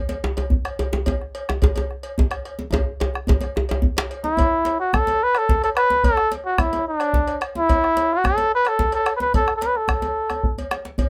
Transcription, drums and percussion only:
0.09 cowbell, djembe slap, djembe tone
0.24 bombo rim, djembe tone
0.37 cowbell, djembe tone
0.50 bombo low, djembe bass
0.65 bombo rim, cowbell
0.79 bombo rim, cowbell, djembe tone
0.93 djembe slap, djembe tone
1.06 bombo low, cowbell, djembe tone, djembe bass
1.21 bombo rim
1.35 cowbell
1.49 bombo rim, djembe slap, djembe tone
1.62 bombo low, cowbell, djembe slap, djembe tone, djembe bass
1.76 cowbell, djembe tone
1.78 djembe tone
1.91 bombo rim
2.03 cowbell
2.18 bombo low, djembe tone, djembe bass
2.31 bombo rim, cowbell
2.45 bombo rim, cowbell
2.59 djembe slap, djembe tone
2.73 bombo low, cowbell, djembe tone, djembe bass
3.00 bombo rim, cowbell, djembe tone
3.14 bombo rim, djembe slap
3.27 bombo low, cowbell, djembe tone, djembe bass
3.41 bombo rim, cowbell, djembe slap, djembe tone
3.55 bombo rim, djembe slap, djembe tone
3.69 cowbell, djembe tone
3.82 bombo low, djembe bass
3.97 bombo rim, cowbell, djembe slap
4.11 cowbell
4.24 djembe slap, djembe tone
4.37 bombo low, cowbell, djembe bass
4.65 cowbell, djembe slap
4.93 bombo rim, bombo low, cowbell, djembe bass
5.07 cowbell, djembe slap, djembe tone
5.35 bombo rim, cowbell
5.49 bombo low, djembe slap, djembe bass
5.63 bombo rim, cowbell
5.77 bombo rim, cowbell
5.90 djembe slap, djembe tone
6.04 bombo low, cowbell, djembe bass
6.17 bombo rim
6.32 cowbell, djembe slap
6.58 bombo rim, bombo low, cowbell, djembe bass
6.73 cowbell, djembe slap, djembe tone
7.00 bombo rim, cowbell
7.13 bombo low, djembe slap, djembe bass
7.28 bombo rim, cowbell
7.41 bombo rim, cowbell
7.55 djembe slap, djembe tone
7.69 bombo low, cowbell, djembe bass
7.84 bombo rim
7.97 cowbell, djembe slap
8.24 bombo rim, bombo low, cowbell, djembe bass
8.38 cowbell, djembe slap, djembe tone
8.65 bombo rim, cowbell
8.79 bombo low, djembe slap, djembe bass
8.92 bombo rim, cowbell
9.06 bombo rim, cowbell
9.20 djembe slap, djembe tone
9.34 bombo low, cowbell, djembe bass
9.48 bombo rim
9.61 cowbell, djembe slap
9.75 bombo rim, djembe slap
9.88 bombo rim, bombo low, cowbell, djembe slap, djembe bass
10.02 cowbell, djembe slap, djembe tone
10.30 bombo rim, cowbell, djembe bass
10.43 bombo low, djembe bass
10.58 cowbell, djembe bass
10.71 bombo rim, cowbell, djembe slap
10.85 bombo rim, djembe slap
10.98 bombo low, cowbell, djembe bass

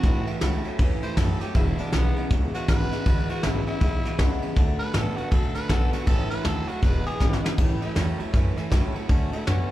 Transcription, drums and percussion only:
0.03 kick, snare, ride
0.27 ride
0.41 snare, ride
0.65 ride
0.79 kick, ride
1.03 ride
1.17 kick, snare, ride
1.41 snare, ride
1.55 kick, snare, ride
1.78 ride
1.92 snare, ride
2.16 ride
2.31 kick, snare, ride
2.54 snare, ride
2.68 kick, snare, ride
2.92 snare, ride
3.06 kick, ride
3.29 ride
3.43 snare, ride
3.67 ride
3.81 kick, snare, ride
4.05 snare, ride
4.19 kick, snare, ride
4.42 ride
4.56 kick, ride
4.80 ride
4.94 snare, ride
5.17 ride
5.32 kick, ride
5.55 snare, ride
5.69 kick, snare, ride
5.93 snare, ride
6.07 kick, ride
6.31 ride
6.45 snare, ride
6.68 ride
6.83 kick, snare, ride
7.06 ride
7.21 kick, snare
7.33 snare
7.46 snare
7.58 kick, snare, crash
7.82 ride
7.96 snare, ride
8.20 ride
8.34 kick, snare, ride
8.57 snare, ride
8.72 kick, snare, ride
8.95 ride
9.09 kick, ride
9.33 ride
9.47 snare, ride

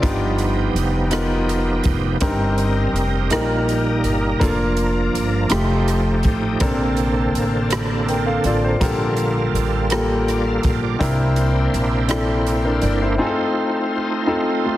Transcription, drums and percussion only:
0.03 kick, closed hi-hat
0.38 closed hi-hat
0.76 closed hi-hat
1.11 cross-stick, closed hi-hat
1.49 cross-stick, closed hi-hat
1.84 kick, closed hi-hat
2.21 kick, closed hi-hat
2.58 closed hi-hat
2.96 closed hi-hat
3.30 cross-stick, closed hi-hat
3.69 closed hi-hat
4.04 closed hi-hat
4.41 kick, closed hi-hat
4.77 closed hi-hat
5.15 closed hi-hat
5.50 cross-stick, closed hi-hat
5.88 cross-stick, closed hi-hat
6.23 kick, closed hi-hat
6.60 kick, closed hi-hat
6.97 closed hi-hat
7.35 closed hi-hat
7.70 cross-stick, closed hi-hat
8.08 closed hi-hat
8.44 closed hi-hat
8.81 kick, closed hi-hat
9.17 closed hi-hat
9.55 closed hi-hat
9.90 cross-stick, closed hi-hat
10.28 cross-stick, closed hi-hat
10.63 kick, closed hi-hat
11.01 kick, closed hi-hat
11.36 closed hi-hat
11.74 closed hi-hat
12.09 cross-stick, closed hi-hat
12.46 closed hi-hat
12.81 closed hi-hat

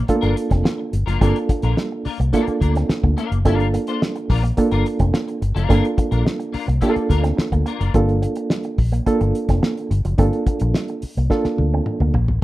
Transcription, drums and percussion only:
0.08 kick, closed hi-hat
0.23 closed hi-hat
0.37 closed hi-hat
0.51 kick, snare, closed hi-hat
0.65 snare
0.93 closed hi-hat
1.08 closed hi-hat
1.21 kick, closed hi-hat
1.36 closed hi-hat
1.49 kick, closed hi-hat
1.62 closed hi-hat
1.77 snare
2.05 open hi-hat
2.21 closed hi-hat
2.33 kick, closed hi-hat
2.47 closed hi-hat
2.61 kick, closed hi-hat
2.75 snare, closed hi-hat
2.89 snare
3.04 kick
3.18 closed hi-hat
3.32 closed hi-hat
3.45 kick, closed hi-hat
3.60 closed hi-hat
3.74 closed hi-hat
3.87 closed hi-hat
4.02 snare
4.15 closed hi-hat
4.30 kick, open hi-hat
4.45 closed hi-hat
4.57 kick, closed hi-hat
4.71 closed hi-hat
4.86 closed hi-hat
4.99 kick, closed hi-hat
5.14 snare
5.28 closed hi-hat
5.42 closed hi-hat
5.56 closed hi-hat
5.70 kick, closed hi-hat
5.85 closed hi-hat
5.98 kick, closed hi-hat
6.12 closed hi-hat
6.27 snare
6.40 closed hi-hat
6.54 open hi-hat
6.69 closed hi-hat
6.82 kick, closed hi-hat
6.96 closed hi-hat
7.10 kick, closed hi-hat
7.24 snare, closed hi-hat
7.38 snare
7.52 kick, closed hi-hat
7.66 closed hi-hat
7.81 closed hi-hat
7.94 kick, closed hi-hat
8.09 closed hi-hat
8.23 closed hi-hat
8.35 closed hi-hat
8.50 snare
8.64 closed hi-hat
8.78 kick, open hi-hat
8.94 closed hi-hat
9.06 kick, closed hi-hat
9.21 closed hi-hat
9.35 closed hi-hat
9.49 kick, snare, closed hi-hat
9.63 snare
9.77 closed hi-hat
9.91 closed hi-hat
10.05 closed hi-hat
10.18 kick, closed hi-hat
10.33 closed hi-hat
10.47 kick, closed hi-hat
10.60 closed hi-hat
10.74 snare
10.88 closed hi-hat
11.02 open hi-hat
11.17 closed hi-hat
11.30 kick, snare
11.44 snare
11.58 high tom
11.86 mid tom
12.00 mid tom
12.14 floor tom
12.28 floor tom

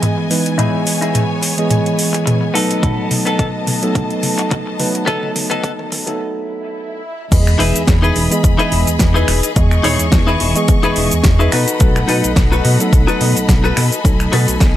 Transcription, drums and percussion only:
0.03 closed hi-hat, mid tom
0.31 open hi-hat
0.46 closed hi-hat
0.59 closed hi-hat, mid tom
0.87 open hi-hat
1.02 closed hi-hat
1.15 closed hi-hat, mid tom
1.43 open hi-hat
1.58 closed hi-hat
1.71 closed hi-hat, mid tom
1.86 closed hi-hat
1.99 open hi-hat
2.14 closed hi-hat
2.27 closed hi-hat, mid tom
2.55 open hi-hat
2.71 closed hi-hat
2.83 kick, closed hi-hat, mid tom
3.11 open hi-hat, mid tom
3.27 closed hi-hat
3.39 kick, closed hi-hat, mid tom
3.67 open hi-hat, mid tom
3.83 closed hi-hat
3.95 kick, closed hi-hat, mid tom
4.10 closed hi-hat
4.23 open hi-hat, mid tom
4.38 closed hi-hat
4.51 kick, closed hi-hat, mid tom
4.80 open hi-hat, mid tom
4.95 closed hi-hat
5.08 kick, closed hi-hat, mid tom
5.23 mid tom
5.36 open hi-hat, mid tom
5.51 closed hi-hat, mid tom
5.64 kick, closed hi-hat, mid tom
5.79 mid tom
5.92 open hi-hat, mid tom
6.07 closed hi-hat, mid tom
7.32 kick, closed hi-hat, crash, shaker
7.47 finger snap, shaker
7.60 open hi-hat
7.76 closed hi-hat, shaker
7.88 kick, snare, closed hi-hat, shaker
8.04 shaker
8.16 open hi-hat
8.32 closed hi-hat, shaker
8.44 kick, closed hi-hat, shaker
8.59 closed hi-hat, shaker
8.72 open hi-hat
8.87 closed hi-hat, shaker
8.99 kick, snare, closed hi-hat, shaker
9.16 shaker
9.28 finger snap, open hi-hat
9.43 closed hi-hat, shaker
9.56 kick, closed hi-hat, shaker
9.71 finger snap, shaker
9.84 open hi-hat
9.99 closed hi-hat, shaker
10.12 kick, snare, closed hi-hat, shaker
10.28 shaker
10.40 open hi-hat
10.55 closed hi-hat, shaker
10.68 kick, closed hi-hat, shaker
10.83 closed hi-hat, shaker
10.96 open hi-hat
11.11 closed hi-hat, shaker
11.24 kick, snare, closed hi-hat, shaker
11.40 shaker
11.52 finger snap, open hi-hat
11.68 closed hi-hat, shaker
11.80 kick, closed hi-hat, shaker
11.96 finger snap, shaker
12.09 open hi-hat
12.24 closed hi-hat, shaker
12.36 kick, snare, closed hi-hat, shaker
12.53 shaker
12.65 open hi-hat
12.80 closed hi-hat, shaker
12.93 kick, closed hi-hat, shaker
13.08 closed hi-hat, shaker
13.21 open hi-hat
13.37 closed hi-hat, shaker
13.49 kick, snare, closed hi-hat, shaker
13.65 shaker
13.77 finger snap, open hi-hat
13.92 closed hi-hat, shaker
14.05 kick, closed hi-hat, shaker
14.20 finger snap, shaker
14.33 open hi-hat
14.48 closed hi-hat, shaker
14.60 kick, snare, closed hi-hat, shaker

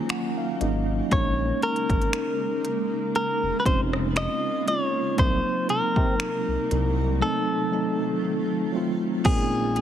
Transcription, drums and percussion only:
0.09 finger snap, closed hi-hat
0.61 closed hi-hat
1.11 kick, closed hi-hat
1.62 closed hi-hat
1.76 closed hi-hat
1.90 kick, closed hi-hat
2.02 closed hi-hat
2.13 finger snap, closed hi-hat
2.65 closed hi-hat
3.15 closed hi-hat
3.65 kick, closed hi-hat
3.93 cross-stick
4.16 finger snap, closed hi-hat
4.68 closed hi-hat
5.18 kick, closed hi-hat
5.69 closed hi-hat
5.96 kick
6.20 finger snap, closed hi-hat
6.71 closed hi-hat
9.25 kick, closed hi-hat, crash
9.76 closed hi-hat

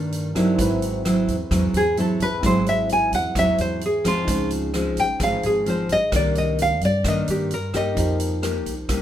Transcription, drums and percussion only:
0.12 closed hi-hat
0.35 kick, cross-stick, closed hi-hat
0.59 kick, closed hi-hat
0.82 closed hi-hat
1.05 cross-stick, closed hi-hat
1.28 kick, closed hi-hat
1.51 kick, cross-stick, closed hi-hat
1.74 closed hi-hat
1.97 closed hi-hat
2.20 kick, closed hi-hat
2.43 kick, cross-stick, closed hi-hat
2.66 closed hi-hat
2.89 closed hi-hat
3.12 kick, closed hi-hat
3.35 kick, cross-stick, closed hi-hat
3.58 closed hi-hat
3.81 closed hi-hat
4.05 kick, cross-stick, closed hi-hat
4.28 kick, closed hi-hat
4.50 closed hi-hat
4.74 cross-stick, closed hi-hat
4.97 kick, closed hi-hat
5.20 kick, cross-stick, closed hi-hat
5.43 closed hi-hat
5.66 closed hi-hat
5.89 kick, closed hi-hat
6.12 kick, cross-stick, closed hi-hat
6.35 closed hi-hat
6.58 closed hi-hat
6.81 kick, closed hi-hat
7.04 kick, cross-stick, closed hi-hat
7.28 closed hi-hat
7.51 closed hi-hat
7.74 kick, cross-stick, closed hi-hat
7.97 kick, closed hi-hat
8.20 closed hi-hat
8.43 cross-stick, closed hi-hat
8.66 kick, closed hi-hat
8.89 kick, cross-stick, closed hi-hat

